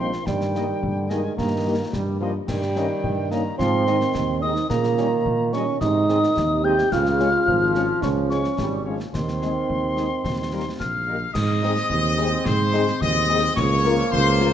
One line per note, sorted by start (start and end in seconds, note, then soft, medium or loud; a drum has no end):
0.00 0.18 A#1 medium
0.00 0.23 F3 medium
0.00 0.10 G3 medium
0.00 0.10 A#3 medium
0.00 0.12 C4 medium
0.00 0.10 D#4 medium
0.00 0.28 C6 medium
0.13 snare medium
0.26 0.73 G2 medium
0.26 0.82 D#3 medium
0.26 1.11 G3 loud
0.26 1.11 G5 medium
0.26 concert bass drum medium
0.26 snare medium
0.41 snare medium
0.55 0.65 G3 medium
0.55 0.65 A#3 medium
0.55 0.65 D#4 medium
0.55 0.65 D#5 medium
0.55 snare soft
0.82 1.28 G2 medium
0.82 1.10 D3 medium
0.82 concert bass drum medium
1.09 1.35 D#3 medium
1.09 1.21 G3 medium
1.09 1.37 G#3 medium
1.09 1.21 A#3 medium
1.09 1.21 D#4 medium
1.09 1.19 D#5 medium
1.09 1.38 G#5 medium
1.09 snare medium
1.36 1.84 G2 medium
1.36 1.89 D#3 medium
1.36 1.89 A#3 loud
1.36 1.89 A#5 medium
1.36 concert bass drum medium
1.36 snare medium
1.65 1.76 G3 medium
1.65 1.76 A#3 medium
1.65 1.76 D#4 medium
1.65 1.75 D#5 medium
1.92 2.39 G2 medium
1.92 2.20 G3 medium
1.92 concert bass drum medium
1.92 snare medium
2.20 2.33 F3 medium
2.20 2.31 G3 medium
2.20 2.31 A#3 medium
2.20 2.31 D#4 medium
2.20 2.31 D#5 medium
2.47 2.90 G2 medium
2.47 2.61 D#3 medium
2.47 3.28 G3 loud
2.47 3.33 G5 medium
2.47 concert bass drum medium
2.47 snare medium
2.47 crash soft
2.62 snare medium
2.76 3.55 D#3 medium
2.76 2.86 A#3 medium
2.76 2.86 C#4 medium
2.76 2.86 D#4 medium
2.76 2.86 D#5 medium
2.76 snare medium
3.04 3.50 G2 medium
3.04 concert bass drum medium
3.31 3.44 A#3 medium
3.31 3.42 A#3 medium
3.31 3.42 C#4 medium
3.31 3.42 D#4 medium
3.31 3.41 D#5 medium
3.31 3.58 A#5 medium
3.31 snare medium
3.58 4.06 G#2 medium
3.58 3.84 F3 medium
3.58 4.43 C4 loud
3.58 4.38 C6 loud
3.58 concert bass drum medium
3.58 snare medium
3.86 4.66 D#3 medium
3.86 3.97 G#3 medium
3.86 3.97 C4 medium
3.86 3.98 D#4 medium
3.86 3.96 D#5 medium
3.86 snare soft
4.01 snare medium
4.14 4.60 D#2 medium
4.14 concert bass drum medium
4.14 snare medium
4.41 4.53 G#3 medium
4.41 4.53 C4 medium
4.41 4.69 D#4 loud
4.41 4.53 D#4 medium
4.41 4.52 D#5 medium
4.41 4.68 D#6 medium
4.56 snare medium
4.70 5.16 A#2 medium
4.70 4.96 C#3 medium
4.70 5.55 A#3 loud
4.70 5.49 A#5 medium
4.70 concert bass drum medium
4.70 snare medium
4.84 snare medium
4.98 5.77 D#3 medium
4.98 5.08 G3 medium
4.98 5.08 C#4 medium
4.98 5.08 D#4 medium
4.98 5.08 D#5 medium
4.98 snare medium
5.26 5.72 A#2 medium
5.26 concert bass drum medium
5.53 5.64 G3 medium
5.53 5.81 C#4 loud
5.53 5.64 C#4 medium
5.53 5.64 D#4 medium
5.53 5.63 D#5 medium
5.53 5.79 C#6 medium
5.53 snare medium
5.80 6.27 G#2 medium
5.80 6.07 C3 medium
5.80 6.60 D#4 loud
5.80 6.66 D#6 loud
5.80 concert bass drum medium
5.80 snare medium
6.07 6.36 D#3 medium
6.07 6.19 G#3 medium
6.07 6.19 C4 medium
6.07 6.19 D#4 medium
6.07 6.19 D#5 medium
6.07 snare medium
6.23 snare medium
6.36 6.82 D#2 medium
6.36 6.91 C3 medium
6.36 concert bass drum medium
6.36 snare medium
6.64 6.74 G#3 medium
6.64 6.74 C4 medium
6.64 6.74 D#4 medium
6.64 6.90 G4 loud
6.64 6.75 D#5 medium
6.64 6.94 G6 medium
6.78 snare medium
6.90 7.38 C#2 medium
6.90 7.43 C#3 medium
6.90 8.05 F4 loud
6.90 8.02 F6 loud
6.90 concert bass drum medium
6.90 snare medium
6.90 crash soft
7.06 snare medium
7.20 7.30 G#3 medium
7.20 7.30 C#4 medium
7.20 7.30 F4 medium
7.20 7.30 C#5 medium
7.20 snare soft
7.45 7.93 G#1 medium
7.45 8.53 F3 medium
7.45 concert bass drum medium
7.75 7.85 G#3 medium
7.75 7.85 C#4 medium
7.75 7.85 F4 medium
7.75 7.85 C#5 medium
7.75 snare medium
8.02 8.49 C#2 medium
8.02 8.31 C#4 loud
8.02 8.09 C#6 medium
8.02 concert bass drum medium
8.02 snare medium
8.30 8.41 G#3 medium
8.30 8.40 C#4 medium
8.30 8.82 C#4 loud
8.30 8.40 F4 medium
8.30 8.40 C#5 medium
8.30 8.81 C#6 medium
8.30 snare medium
8.44 snare soft
8.57 9.04 G#1 medium
8.57 8.84 G3 medium
8.57 concert bass drum medium
8.57 snare medium
8.85 8.99 F3 medium
8.85 8.96 G#3 medium
8.85 8.96 C#4 medium
8.85 8.96 F4 medium
8.85 8.95 C#5 medium
9.00 snare medium
9.13 9.60 D#2 medium
9.13 11.04 D#3 medium
9.13 11.04 C4 loud
9.13 10.76 C6 medium
9.13 concert bass drum medium
9.13 snare medium
9.28 snare medium
9.40 9.52 G#3 medium
9.40 9.52 C4 medium
9.40 9.51 D#4 medium
9.40 9.50 G#4 medium
9.40 snare soft
9.69 10.10 D#2 medium
9.69 concert bass drum medium
9.95 10.07 G#3 medium
9.95 10.07 C4 medium
9.95 10.07 D#4 medium
9.95 10.06 G#4 medium
9.95 snare medium
10.24 10.70 D#2 medium
10.24 concert bass drum medium
10.24 snare medium
10.51 10.63 G3 medium
10.51 10.63 A#3 medium
10.51 10.63 D#4 medium
10.51 10.62 A#4 medium
10.78 11.25 A#1 medium
10.78 11.30 F5 medium
10.78 11.31 F6 loud
10.78 concert bass drum medium
10.78 snare medium
11.06 11.18 G3 soft
11.06 11.17 A#3 medium
11.06 11.18 D#4 medium
11.06 11.17 A#4 medium
11.33 11.81 G#2 loud
11.33 13.53 G#3 medium
11.33 13.53 C4 medium
11.33 12.45 D#5 loud
11.33 12.41 D#6 medium
11.33 concert bass drum medium
11.33 snare medium
11.33 crash medium
11.63 11.73 C4 medium
11.63 11.73 D#4 medium
11.63 11.73 G#4 medium
11.63 snare medium
11.76 snare medium
11.90 12.37 D#2 medium
11.90 concert bass drum medium
12.18 12.28 C4 medium
12.18 12.28 D#4 medium
12.18 12.28 G#4 medium
12.18 snare medium
12.45 12.92 G#2 loud
12.45 13.01 C5 loud
12.45 13.02 C6 loud
12.45 concert bass drum medium
12.45 snare medium
12.73 12.84 C4 medium
12.73 12.84 D#4 medium
12.73 12.84 G#4 medium
12.73 snare medium
12.88 snare medium
13.01 13.47 D#2 medium
13.01 13.53 D#5 loud
13.01 13.55 D#6 loud
13.01 concert bass drum medium
13.01 snare medium
13.29 13.39 C4 medium
13.29 13.39 D#4 medium
13.29 13.39 G#4 medium
13.56 14.03 C#2 loud
13.56 14.53 F3 loud
13.56 14.53 A#3 loud
13.56 14.12 C#5 loud
13.56 14.08 C#6 loud
13.56 concert bass drum medium
13.56 snare medium
13.56 crash soft
13.85 13.95 A#3 medium
13.85 13.95 F4 medium
13.85 13.95 A#4 medium
13.85 snare medium
13.99 snare medium
14.11 14.53 C#2 loud
14.11 14.53 C5 loud
14.11 14.53 C6 loud
14.11 concert bass drum medium
14.40 14.50 A#3 medium
14.40 14.50 F4 medium
14.40 14.50 A#4 medium
14.40 snare medium